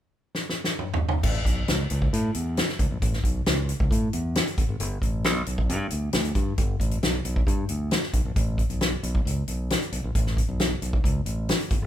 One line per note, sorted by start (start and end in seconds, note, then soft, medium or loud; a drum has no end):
0.35 snare medium
0.50 snare medium
0.64 snare medium
0.79 mid tom medium
0.94 floor tom medium
1.09 floor tom medium
1.23 1.40 A1 medium
1.23 kick loud
1.23 crash medium
1.45 1.62 B1 medium
1.45 kick medium
1.45 closed hi-hat medium
1.68 1.85 C#2 medium
1.68 snare medium
1.68 closed hi-hat medium
1.90 2.07 C#2 medium
1.90 closed hi-hat medium
2.02 kick medium
2.13 2.29 A2 loud
2.13 closed hi-hat medium
2.35 2.60 E2 medium
2.35 closed hi-hat medium
2.57 snare loud
2.57 closed hi-hat medium
2.69 snare soft
2.79 2.88 C#2 medium
2.79 kick medium
2.79 closed hi-hat medium
2.91 2.99 A#1 medium
3.02 3.19 A1 medium
3.02 kick medium
3.02 closed hi-hat medium
3.13 snare soft
3.24 3.40 B1 medium
3.24 kick medium
3.24 closed hi-hat medium
3.46 3.71 C#2 medium
3.46 snare loud
3.46 closed hi-hat medium
3.69 closed hi-hat medium
3.80 3.88 C#2 medium
3.80 kick medium
3.91 4.07 A2 medium
3.91 kick medium
3.91 closed hi-hat medium
4.13 4.38 E2 medium
4.13 closed hi-hat medium
4.35 snare loud
4.35 closed hi-hat medium
4.47 closed hi-hat soft
4.58 4.66 G1 medium
4.58 kick loud
4.58 closed hi-hat medium
4.69 4.77 G#1 medium
4.80 4.97 G1 medium
4.80 closed hi-hat medium
5.02 5.25 A1 medium
5.02 kick medium
5.02 closed hi-hat medium
5.24 5.41 B1 medium
5.24 snare medium
5.24 closed hi-hat medium
5.46 5.71 B1 medium
5.46 closed hi-hat medium
5.58 kick medium
5.69 5.86 G2 loud
5.69 closed hi-hat medium
5.90 6.08 D2 medium
5.90 closed hi-hat medium
6.13 6.31 D2 medium
6.13 snare medium
6.13 closed hi-hat medium
6.25 closed hi-hat soft
6.35 6.52 G2 medium
6.35 kick medium
6.35 closed hi-hat medium
6.58 6.75 G1 medium
6.58 kick loud
6.58 closed hi-hat medium
6.80 6.97 A1 medium
6.80 kick medium
6.80 closed hi-hat medium
6.91 closed hi-hat medium
7.03 7.19 B1 medium
7.03 snare loud
7.03 closed hi-hat medium
7.25 7.42 B1 medium
7.25 closed hi-hat medium
7.36 kick medium
7.47 7.64 G2 medium
7.47 kick medium
7.47 closed hi-hat medium
7.69 7.95 D2 medium
7.69 closed hi-hat medium
7.91 snare loud
7.91 closed hi-hat medium
8.03 snare soft
8.13 8.22 B1 medium
8.13 kick medium
8.13 closed hi-hat medium
8.25 8.34 A#1 medium
8.36 8.61 A1 medium
8.36 kick loud
8.36 closed hi-hat medium
8.58 kick medium
8.58 closed hi-hat medium
8.70 8.95 B1 medium
8.70 closed hi-hat soft
8.81 snare medium
8.81 closed hi-hat medium
9.03 9.20 B1 medium
9.03 closed hi-hat medium
9.15 kick medium
9.25 9.42 C#2 medium
9.25 closed hi-hat medium
9.48 9.73 B1 medium
9.48 closed hi-hat medium
9.70 snare medium
9.70 closed hi-hat medium
9.82 closed hi-hat soft
9.92 10.01 B1 medium
9.92 closed hi-hat medium
10.04 10.12 A#1 medium
10.15 10.40 A1 medium
10.15 kick loud
10.15 closed hi-hat medium
10.26 snare soft
10.37 kick medium
10.37 closed hi-hat medium
10.49 10.73 B1 medium
10.60 snare loud
10.60 closed hi-hat medium
10.82 10.98 B1 medium
10.82 closed hi-hat medium
10.93 kick medium
11.04 11.21 C#2 medium
11.04 kick medium
11.04 closed hi-hat medium
11.26 11.51 A1 medium
11.26 closed hi-hat medium
11.49 snare loud
11.49 closed hi-hat medium
11.60 closed hi-hat soft
11.71 11.79 G1 medium
11.71 kick loud
11.71 closed hi-hat medium
11.82 11.87 G#1 medium